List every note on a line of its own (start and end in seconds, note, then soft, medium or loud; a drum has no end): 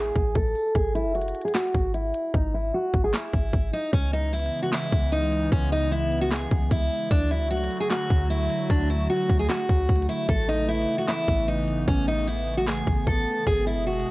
0.00 0.12 A1 loud
0.00 0.33 G#4 medium
0.16 0.35 A1 loud
0.16 kick loud
0.16 closed hi-hat medium
0.35 0.54 A1 loud
0.35 0.73 A4 medium
0.35 kick loud
0.35 closed hi-hat medium
0.55 open hi-hat medium
0.75 1.06 G#1 loud
0.75 0.93 G#4 loud
0.75 kick loud
0.75 closed hi-hat medium
0.95 1.13 E4 medium
0.95 closed hi-hat medium
1.05 1.33 F#1 loud
1.15 1.43 F#4 medium
1.15 closed hi-hat soft
1.22 closed hi-hat medium
1.28 closed hi-hat medium
1.35 closed hi-hat soft
1.41 1.54 G#4 medium
1.41 closed hi-hat medium
1.48 closed hi-hat medium
1.54 1.92 F#4 medium
1.54 snare loud
1.54 clap loud
1.54 closed hi-hat medium
1.75 2.13 G#1 loud
1.75 kick loud
1.75 closed hi-hat medium
1.94 2.32 E4 medium
1.94 closed hi-hat medium
2.14 closed hi-hat medium
2.34 2.72 G#1 loud
2.34 2.52 D#4 loud
2.34 kick loud
2.54 2.72 E4 medium
2.74 3.02 F#4 medium
2.94 3.13 G#1 loud
2.94 kick medium
3.04 3.13 G#4 medium
3.14 3.70 E4 medium
3.14 snare loud
3.14 clap loud
3.33 3.53 G#1 loud
3.33 kick loud
3.53 3.72 G#1 loud
3.53 kick loud
3.73 3.91 D#4 medium
3.93 4.50 C#2 loud
3.93 7.08 C#3 medium
3.93 7.08 E3 medium
3.93 7.08 G#3 medium
3.93 7.08 B3 medium
3.93 4.11 C#4 medium
3.93 kick loud
3.93 closed hi-hat medium
4.13 4.31 D#4 medium
4.13 closed hi-hat medium
4.33 4.61 E4 medium
4.33 closed hi-hat soft
4.39 closed hi-hat medium
4.46 closed hi-hat medium
4.53 closed hi-hat soft
4.59 4.72 F#4 medium
4.59 closed hi-hat medium
4.66 closed hi-hat medium
4.72 5.10 E4 medium
4.72 snare loud
4.72 clap loud
4.72 closed hi-hat medium
4.92 5.50 C#2 loud
4.92 kick loud
4.92 closed hi-hat medium
5.12 5.50 D#4 medium
5.12 closed hi-hat medium
5.32 closed hi-hat medium
5.52 6.47 C#2 loud
5.52 5.70 C#4 medium
5.52 kick loud
5.52 closed hi-hat medium
5.72 5.90 D#4 medium
5.72 closed hi-hat medium
5.91 6.20 E4 medium
5.91 closed hi-hat medium
6.12 closed hi-hat medium
6.18 6.30 F#4 medium
6.18 closed hi-hat medium
6.25 closed hi-hat soft
6.31 6.69 G#4 medium
6.31 snare loud
6.31 clap loud
6.31 closed hi-hat medium
6.51 6.70 C#2 loud
6.51 kick loud
6.51 closed hi-hat medium
6.71 6.90 C#2 loud
6.71 7.08 E4 medium
6.71 kick loud
6.71 closed hi-hat medium
6.91 open hi-hat medium
7.11 7.42 D2 loud
7.11 10.26 D3 medium
7.11 10.26 F#3 medium
7.11 13.43 A3 medium
7.11 7.29 D4 medium
7.11 10.26 F#4 medium
7.11 kick loud
7.11 closed hi-hat medium
7.31 7.49 E4 medium
7.31 closed hi-hat medium
7.41 7.69 C#2 loud
7.51 7.79 F#4 medium
7.51 closed hi-hat soft
7.57 closed hi-hat medium
7.64 closed hi-hat medium
7.71 closed hi-hat soft
7.77 7.89 G#4 medium
7.77 closed hi-hat medium
7.84 closed hi-hat medium
7.90 8.28 F#4 medium
7.90 snare loud
7.90 clap loud
7.90 closed hi-hat medium
8.10 8.48 D2 loud
8.10 kick loud
8.10 closed hi-hat medium
8.30 8.67 E4 medium
8.30 closed hi-hat loud
8.50 closed hi-hat medium
8.70 9.08 D2 loud
8.70 8.88 D4 medium
8.70 kick loud
8.70 closed hi-hat medium
8.90 9.08 E4 medium
8.90 closed hi-hat medium
9.10 9.38 F#4 medium
9.10 closed hi-hat medium
9.16 closed hi-hat medium
9.23 closed hi-hat medium
9.30 9.49 D2 loud
9.30 kick medium
9.30 closed hi-hat medium
9.35 closed hi-hat medium
9.39 9.48 G#4 medium
9.39 closed hi-hat medium
9.45 closed hi-hat medium
9.49 10.05 F#4 medium
9.49 snare loud
9.49 clap loud
9.49 closed hi-hat medium
9.69 9.88 D2 loud
9.69 kick loud
9.69 closed hi-hat medium
9.89 10.08 D2 loud
9.89 kick medium
9.89 closed hi-hat medium
9.96 closed hi-hat medium
10.02 closed hi-hat medium
10.09 10.27 E4 medium
10.09 closed hi-hat medium
10.29 10.86 A1 loud
10.29 13.44 C#3 medium
10.29 13.44 E3 loud
10.29 14.11 B3 medium
10.29 10.47 A4 medium
10.29 kick loud
10.29 closed hi-hat medium
10.49 10.67 D#4 medium
10.49 closed hi-hat medium
10.68 10.96 E4 medium
10.68 closed hi-hat soft
10.75 closed hi-hat medium
10.82 closed hi-hat medium
10.88 closed hi-hat soft
10.95 11.07 F#4 medium
10.95 closed hi-hat medium
11.02 closed hi-hat medium
11.08 11.46 E4 medium
11.08 snare loud
11.08 clap loud
11.08 closed hi-hat medium
11.28 11.85 A1 loud
11.28 kick loud
11.28 closed hi-hat medium
11.48 11.85 D#4 medium
11.48 closed hi-hat loud
11.68 closed hi-hat medium
11.88 12.83 A1 loud
11.88 12.06 C#4 loud
11.88 kick loud
11.88 closed hi-hat medium
12.08 12.26 D#4 medium
12.08 closed hi-hat medium
12.27 12.56 E4 medium
12.27 closed hi-hat medium
12.47 closed hi-hat medium
12.54 12.66 F#4 medium
12.54 closed hi-hat medium
12.61 closed hi-hat soft
12.67 13.05 G#4 medium
12.67 snare loud
12.67 clap loud
12.67 closed hi-hat medium
12.87 13.06 A1 loud
12.87 kick loud
12.87 closed hi-hat medium
13.07 13.26 A1 loud
13.07 13.44 A4 medium
13.07 kick loud
13.07 closed hi-hat medium
13.27 open hi-hat medium
13.47 13.78 G#1 loud
13.47 14.11 B2 medium
13.47 14.11 G#3 medium
13.47 14.11 G#4 loud
13.47 13.65 G#4 loud
13.47 kick loud
13.47 closed hi-hat medium
13.67 13.85 E4 medium
13.67 closed hi-hat medium
13.76 14.05 F#1 loud
13.86 14.11 F#4 medium
13.86 closed hi-hat soft
13.93 closed hi-hat medium
14.00 closed hi-hat medium
14.06 closed hi-hat soft